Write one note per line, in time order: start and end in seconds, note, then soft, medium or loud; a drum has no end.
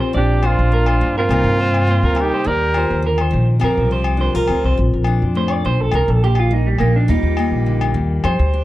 0.00 1.30 F3 medium
0.00 0.11 F4 medium
0.00 0.14 G4 medium
0.00 0.14 C5 medium
0.13 0.55 A#1 medium
0.13 0.71 A#2 medium
0.13 0.48 D4 medium
0.13 0.48 G4 medium
0.13 0.42 D5 medium
0.43 1.27 D4 medium
0.43 1.17 F4 medium
0.43 0.71 C5 medium
0.43 low agogo medium
0.48 1.18 D4 medium
0.59 0.99 A#1 medium
0.72 1.01 A2 medium
0.72 0.87 A#4 medium
0.86 1.15 C5 medium
0.86 low agogo medium
1.01 1.28 G2 medium
1.01 1.30 A#2 medium
1.18 2.24 C4 medium
1.18 2.23 F4 medium
1.18 1.30 A#4 medium
1.29 1.45 C2 medium
1.29 2.44 C3 medium
1.29 2.14 G3 medium
1.29 1.86 A#3 medium
1.29 1.58 D#4 medium
1.29 1.59 A#4 medium
1.29 low agogo medium
1.44 1.98 G2 medium
1.59 2.43 D#4 medium
1.59 1.87 C5 medium
1.74 low agogo medium
1.87 3.59 A#3 medium
1.87 2.04 C5 medium
2.03 2.30 D2 medium
2.03 2.32 A#4 medium
2.15 2.42 G3 medium
2.15 low agogo medium
2.21 2.52 D#4 medium
2.21 2.48 G4 medium
2.34 2.46 C5 medium
2.44 2.87 D#2 medium
2.44 3.02 D#3 medium
2.44 3.04 A#4 loud
2.44 2.75 D5 medium
2.50 3.06 G4 medium
2.74 3.58 F4 medium
2.74 3.04 C5 medium
2.74 low agogo medium
2.90 3.30 D#2 medium
3.02 3.30 D3 medium
3.02 3.19 A#4 medium
3.18 3.48 C5 medium
3.18 low agogo medium
3.31 3.60 A#1 medium
3.31 3.61 D#3 medium
3.60 3.79 F2 medium
3.60 6.50 F3 medium
3.60 4.48 C4 medium
3.60 4.17 F4 medium
3.60 3.90 G4 medium
3.60 low agogo medium
3.64 3.91 A#4 medium
3.77 4.31 C2 medium
3.91 4.78 G4 medium
3.91 4.19 C5 medium
4.04 low agogo medium
4.17 4.35 D4 medium
4.17 4.35 C5 medium
4.35 4.48 C2 medium
4.35 4.78 F4 soft
4.35 4.63 A#4 medium
4.48 4.62 D2 medium
4.48 4.75 C4 medium
4.48 low agogo medium
4.64 4.77 C2 medium
4.64 4.78 C5 medium
4.78 4.92 A#1 medium
4.78 5.30 A#2 medium
4.93 5.20 A#1 medium
5.04 5.90 D4 medium
5.04 low agogo medium
5.22 5.62 F2 medium
5.35 5.64 A2 medium
5.35 5.52 C5 medium
5.48 low agogo medium
5.52 5.65 D5 loud
5.64 5.92 B1 medium
5.64 5.94 A#2 medium
5.64 5.81 C5 medium
5.81 5.94 A4 medium
5.91 6.07 C2 medium
5.91 6.46 C3 medium
5.91 6.10 A#4 medium
5.91 low agogo medium
6.08 6.76 A#1 medium
6.08 6.23 A4 medium
6.24 7.08 A#3 medium
6.24 6.37 G4 medium
6.35 6.53 F4 medium
6.35 low agogo medium
6.51 7.03 G3 medium
6.51 6.67 D#4 medium
6.67 6.79 G3 soft
6.78 7.07 A#1 medium
6.78 6.94 A#3 medium
6.78 7.06 D#4 medium
6.78 low agogo medium
6.96 7.10 D4 medium
7.08 7.22 D#2 medium
7.08 7.61 D#3 medium
7.08 8.21 G3 medium
7.08 7.37 A#3 medium
7.08 7.96 D#4 medium
7.08 8.22 F4 medium
7.08 8.64 G4 medium
7.23 7.50 D#2 medium
7.37 8.25 A#3 medium
7.37 low agogo medium
7.51 7.92 A#1 medium
7.66 7.94 D3 medium
7.81 low agogo medium
7.94 8.22 D#2 medium
7.94 8.24 D#3 medium
8.24 8.38 F2 medium
8.24 8.64 F3 medium
8.24 8.64 C5 medium
8.24 low agogo medium
8.39 8.64 D2 medium
8.54 8.64 D4 medium